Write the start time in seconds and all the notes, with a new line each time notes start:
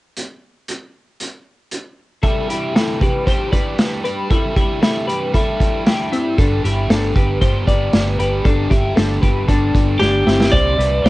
0.17 closed hi-hat
0.68 closed hi-hat
1.20 closed hi-hat
1.71 closed hi-hat
2.23 C3 E3 G3 D4 E4 G4 A4, kick, closed hi-hat
2.49 E4 G4, closed hi-hat
2.75 E4 A4, snare, closed hi-hat
3.01 G4 B4, kick, closed hi-hat
3.26 E3 G3 D4 G4 C5, kick, closed hi-hat
3.52 B4 D5, kick, closed hi-hat
3.79 snare, closed hi-hat
4.04 G3 D4 G4 B4, closed hi-hat
4.30 C3 E3 G3 D4 E4 G4 A4, kick, closed hi-hat
4.56 E4 G4, kick, closed hi-hat
4.82 E4 A4, snare, closed hi-hat
5.08 G4 B4, closed hi-hat
5.34 E3 G3 D4 E4 G4 A4, kick, closed hi-hat
5.60 kick, closed hi-hat
5.87 E4 G4, snare, closed hi-hat
6.12 G3 C4 D4 E4 G4, closed hi-hat
6.38 G1 G2 D3 G3 B3 D4 G4 A4, kick, closed hi-hat
6.64 G1 E4 G4, closed hi-hat
6.90 G1 D4 A4, snare, closed hi-hat
7.16 G1 G4 B4, kick, closed hi-hat
7.41 G1 G3 B3 D4 G4 C5, kick, closed hi-hat
7.67 G1 B4 D5, kick, closed hi-hat
7.93 G1, snare, closed hi-hat
8.19 G1 G3 B3 D4 G4 B4, closed hi-hat
8.45 G1 G2 D3 G3 B3 D4 G4 A4, kick, closed hi-hat
8.70 G1 E4 G4, kick, closed hi-hat
8.96 G1 D4 A4, snare, closed hi-hat
9.22 G1 G4 B4, kick, closed hi-hat
9.48 G1 G3 B3 D4 G4 A4, kick, closed hi-hat
9.74 G1, kick, closed hi-hat
10.00 G1 D4 G4, snare
10.26 G1 G3 B3 C4 D4 E4 G4, snare
10.40 snare
10.51 C2 C3 G3 C4 D4 E4 G4 C5 D5, kick, closed hi-hat
10.78 C2 C4 D4 E4 B4 D5, closed hi-hat
11.04 C2 G3 C4 G4 C5, snare